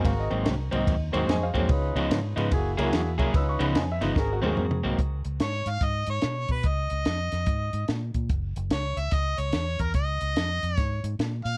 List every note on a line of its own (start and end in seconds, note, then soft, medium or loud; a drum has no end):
0.00 0.12 G#2 medium
0.00 0.12 F#3 medium
0.00 0.12 A#3 medium
0.00 0.12 C4 medium
0.04 0.28 G#1 medium
0.04 0.56 C4 medium
0.04 0.56 F#4 medium
0.04 0.56 G#4 medium
0.04 0.56 A#4 medium
0.04 0.18 F5 medium
0.04 kick loud
0.04 snare soft
0.04 ride medium
0.19 0.30 D#5 loud
0.30 0.44 G#1 loud
0.30 0.54 G#2 medium
0.30 0.54 F#3 medium
0.30 0.54 A#3 medium
0.30 0.53 C4 loud
0.30 0.38 D#4 medium
0.30 0.38 F#4 medium
0.30 0.38 A#4 medium
0.30 0.38 D#5 medium
0.30 snare soft
0.30 ride medium
0.45 0.69 C2 medium
0.45 snare loud
0.45 ride medium
0.71 0.86 C2 medium
0.71 0.95 G#2 medium
0.71 0.95 F#3 medium
0.71 0.95 A#3 medium
0.71 0.94 C4 medium
0.71 0.79 D#4 medium
0.71 0.79 F#4 medium
0.71 0.79 A#4 medium
0.71 0.80 C5 medium
0.71 0.96 D#5 loud
0.71 ride medium
0.87 1.10 D#2 loud
0.87 kick loud
0.87 ride medium
1.12 1.27 D#2 medium
1.12 1.36 G#2 medium
1.12 1.36 F#3 medium
1.12 1.36 A#3 medium
1.12 1.49 C4 medium
1.12 1.36 C4 medium
1.12 1.20 D#4 medium
1.12 1.49 F#4 medium
1.12 1.20 F#4 medium
1.12 1.49 G#4 medium
1.12 1.20 A#4 medium
1.12 1.49 C5 loud
1.12 1.21 C5 loud
1.12 ride medium
1.26 1.52 F2 loud
1.26 1.42 D#5 medium
1.26 1.29 G5 medium
1.26 snare loud
1.26 ride medium
1.30 1.42 G#5 loud
1.43 1.54 C5 medium
1.43 1.56 F5 loud
1.54 1.68 F2 medium
1.54 1.70 G#2 medium
1.54 1.69 F#3 medium
1.54 1.69 A#3 medium
1.54 1.69 C4 medium
1.54 1.62 D#4 medium
1.54 1.62 F#4 medium
1.54 1.95 G#4 medium
1.54 1.62 A#4 medium
1.54 1.62 C5 medium
1.54 2.36 C#5 loud
1.54 kick medium
1.54 ride medium
1.69 1.93 C#2 loud
1.69 2.21 C#4 medium
1.69 2.21 D#4 medium
1.69 2.21 F4 medium
1.69 2.21 B4 medium
1.69 kick loud
1.69 ride medium
1.95 2.09 C#2 loud
1.95 2.19 C#3 medium
1.95 2.19 F3 medium
1.95 2.19 B3 loud
1.95 2.03 D#4 medium
1.95 2.18 D#4 loud
1.95 2.03 F4 medium
1.95 2.03 G#4 medium
1.95 2.03 B4 medium
1.95 ride medium
2.10 2.34 G#2 medium
2.10 snare loud
2.10 ride medium
2.36 2.50 G#2 medium
2.36 2.52 C#3 medium
2.36 2.52 F3 medium
2.36 2.52 B3 medium
2.36 2.51 D#4 medium
2.36 2.44 D#4 loud
2.36 2.44 F4 medium
2.36 2.45 G#4 medium
2.36 2.45 B4 loud
2.36 ride medium
2.51 2.75 F#1 medium
2.51 2.73 A#3 medium
2.51 2.73 E4 medium
2.51 2.73 F#4 medium
2.51 2.73 G#4 loud
2.51 kick loud
2.51 snare soft
2.51 ride medium
2.77 2.91 C#2 medium
2.77 3.01 F#3 medium
2.77 3.14 A#3 medium
2.77 3.01 A#3 medium
2.77 2.85 C#4 loud
2.77 3.01 E4 medium
2.77 2.86 E4 medium
2.77 3.14 E4 medium
2.77 3.14 F#4 medium
2.77 3.00 G#4 loud
2.77 2.85 G#4 medium
2.77 3.14 G#4 medium
2.77 2.86 A#4 loud
2.77 ride medium
2.93 3.16 E2 loud
2.93 snare loud
2.93 ride medium
3.18 3.32 C2 loud
3.18 3.34 F#3 medium
3.18 3.34 A#3 medium
3.18 3.26 C#4 medium
3.18 3.34 E4 medium
3.18 3.26 E4 medium
3.18 3.34 G#4 medium
3.18 3.27 G#4 medium
3.18 3.27 A#4 loud
3.18 kick medium
3.18 ride medium
3.34 3.58 C#2 medium
3.34 3.86 C#4 medium
3.34 3.86 D#4 medium
3.34 3.86 F4 medium
3.34 3.86 B4 medium
3.34 3.48 E6 medium
3.34 kick loud
3.34 snare soft
3.34 ride medium
3.49 3.62 C#6 loud
3.59 3.74 C#2 loud
3.59 3.83 C#3 medium
3.59 3.83 F3 medium
3.59 3.83 B3 medium
3.59 3.83 D#4 loud
3.59 3.68 D#4 medium
3.59 3.68 F4 medium
3.59 3.68 G#4 medium
3.59 3.68 B4 medium
3.59 3.76 B5 loud
3.59 ride medium
3.75 3.98 F2 loud
3.75 3.89 G#5 medium
3.75 snare loud
3.75 ride medium
3.92 4.04 E5 loud
4.01 4.15 G1 medium
4.01 4.17 C#3 medium
4.01 4.17 F3 medium
4.01 4.17 B3 medium
4.01 4.09 D#4 medium
4.01 4.16 D#4 medium
4.01 4.09 F4 medium
4.01 4.09 G#4 medium
4.01 4.09 B4 medium
4.01 snare soft
4.01 ride medium
4.16 4.40 G#1 loud
4.16 4.38 C4 medium
4.16 4.38 F#4 medium
4.16 4.38 G#4 medium
4.16 4.31 G#4 loud
4.16 4.38 A#4 medium
4.16 kick loud
4.16 snare medium
4.33 4.40 F#4 loud
4.41 4.56 D#2 medium
4.41 4.66 G#2 medium
4.41 4.66 F#3 medium
4.41 4.66 A#3 medium
4.41 4.65 C4 loud
4.41 4.79 C4 medium
4.41 4.50 D#4 medium
4.41 4.50 F#4 medium
4.41 4.79 F#4 medium
4.41 4.79 G#4 medium
4.41 4.50 A#4 medium
4.41 4.79 A#4 medium
4.41 4.50 C5 medium
4.41 high tom medium
4.46 4.85 G#4 loud
4.57 4.81 F2 loud
4.57 mid tom medium
4.71 mid tom medium
4.83 4.97 C2 medium
4.83 4.99 G#2 medium
4.83 4.99 F#3 medium
4.83 4.99 A#3 medium
4.83 4.99 C4 medium
4.83 4.92 D#4 medium
4.83 4.92 F#4 medium
4.83 4.92 A#4 medium
4.83 4.92 D#5 medium
4.99 5.22 C#2 medium
4.99 kick medium
4.99 closed hi-hat medium
5.25 5.39 C#2 medium
5.25 closed hi-hat medium
5.40 5.64 G#2 medium
5.40 5.71 C#5 medium
5.40 snare loud
5.40 closed hi-hat medium
5.66 5.80 G#2 medium
5.66 5.86 F5 medium
5.66 closed hi-hat medium
5.81 6.05 G#2 medium
5.81 6.10 D#5 loud
5.81 kick loud
5.81 closed hi-hat medium
6.07 6.21 G#2 medium
6.07 6.48 C#5 loud
6.07 closed hi-hat medium
6.22 6.47 B2 medium
6.22 snare loud
6.22 closed hi-hat medium
6.49 6.63 B2 medium
6.49 6.69 B4 medium
6.49 kick medium
6.49 closed hi-hat medium
6.63 6.88 C#2 medium
6.63 kick loud
6.63 closed hi-hat medium
6.68 7.90 D#5 medium
6.90 7.04 C#2 medium
6.90 closed hi-hat medium
7.05 7.29 F2 medium
7.05 snare loud
7.05 closed hi-hat medium
7.32 7.46 F2 medium
7.32 snare soft
7.32 closed hi-hat medium
7.46 7.71 G#2 medium
7.46 kick loud
7.46 closed hi-hat medium
7.73 7.87 G#2 medium
7.73 closed hi-hat medium
7.88 8.12 A#2 medium
7.88 snare medium
7.88 closed hi-hat medium
8.14 8.28 A#2 medium
8.14 kick medium
8.14 closed hi-hat medium
8.29 8.53 F#1 medium
8.29 kick loud
8.29 closed hi-hat medium
8.56 8.69 F#1 medium
8.56 closed hi-hat medium
8.70 8.94 C#2 medium
8.70 9.00 C#5 medium
8.70 snare loud
8.70 closed hi-hat medium
8.97 9.11 C#2 medium
8.97 9.16 E5 medium
8.97 closed hi-hat medium
9.11 9.36 C#2 medium
9.11 9.41 D#5 medium
9.11 kick loud
9.11 snare soft
9.11 closed hi-hat medium
9.38 9.52 C#2 medium
9.38 9.83 C#5 medium
9.38 closed hi-hat medium
9.53 9.77 E2 medium
9.53 snare loud
9.53 closed hi-hat medium
9.79 9.93 E2 medium
9.79 9.95 A#4 medium
9.79 kick medium
9.79 closed hi-hat medium
9.94 10.19 C#2 medium
9.94 10.77 D#5 medium
9.94 kick loud
9.94 closed hi-hat medium
10.21 10.35 C#2 medium
10.21 closed hi-hat medium
10.36 10.61 F2 medium
10.36 snare loud
10.36 closed hi-hat medium
10.63 10.76 F2 medium
10.63 closed hi-hat medium
10.77 11.01 G#2 medium
10.77 11.16 C#5 medium
10.77 kick loud
10.77 snare soft
10.77 closed hi-hat medium
11.04 11.18 G#2 medium
11.04 closed hi-hat medium
11.19 11.43 A#2 medium
11.19 snare medium
11.19 closed hi-hat medium
11.45 11.57 A#2 medium
11.45 11.57 F5 medium
11.45 closed hi-hat medium